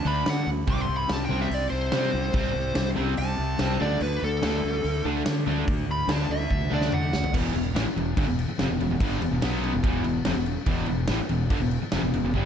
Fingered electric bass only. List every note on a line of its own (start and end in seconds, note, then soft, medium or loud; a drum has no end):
0.05 0.22 D2 medium
0.27 0.44 D3 medium
0.47 0.64 D2 medium
0.67 0.84 C2 medium
0.89 1.06 C2 medium
1.10 1.27 C2 medium
1.30 1.47 C2 medium
1.50 1.67 C2 medium
1.72 1.89 C2 medium
1.92 2.09 C3 medium
2.14 2.30 C2 medium
2.34 2.51 C2 medium
2.55 2.72 C2 medium
2.76 2.93 C2 medium
2.97 3.14 C2 medium
3.18 3.35 C2 loud
3.38 3.55 C2 medium
3.60 3.76 C2 medium
3.81 3.97 D2 loud
4.01 4.18 D2 loud
4.22 4.39 D2 medium
4.44 4.60 D2 loud
4.64 4.81 D2 medium
4.84 5.01 D2 medium
5.05 5.22 D2 medium
5.27 5.43 D3 medium
5.47 5.64 D2 medium
5.67 5.84 D2 loud
5.88 6.05 D2 medium
6.07 6.25 D2 medium
6.29 6.46 D2 medium
6.51 6.68 D2 medium
6.72 6.89 D2 medium
6.92 7.09 D3 medium
7.14 7.30 D2 medium
7.34 7.53 E1 medium
7.54 7.74 E1 medium
7.75 7.85 A1 medium
7.86 muted fingered electric bass stroke soft
7.96 8.16 E1 medium
8.18 8.27 G1 medium
8.28 8.48 E1 medium
8.50 muted fingered electric bass stroke soft
8.60 8.69 F1 medium
8.70 8.80 E1 medium
8.81 8.90 E1 medium
8.91 9.00 E1 medium
9.00 9.20 G1 medium
9.21 9.30 E1 medium
9.31 9.41 E1 medium
9.42 9.71 B1 medium
9.74 9.84 E1 medium
9.84 10.04 E1 medium
10.07 10.25 E1 medium
10.26 10.36 F1 medium
10.37 10.56 E1 medium
10.67 10.86 E1 medium
10.89 11.08 E1 medium
11.09 11.19 A1 medium
11.20 muted fingered electric bass stroke soft
11.29 11.49 E1 medium
11.50 11.60 G1 medium
11.60 11.80 E1 medium
11.82 muted fingered electric bass stroke soft
11.93 12.02 F1 medium
12.03 12.13 E1 medium
12.14 12.23 E1 medium
12.24 12.34 E1 medium
12.34 12.45 G1 medium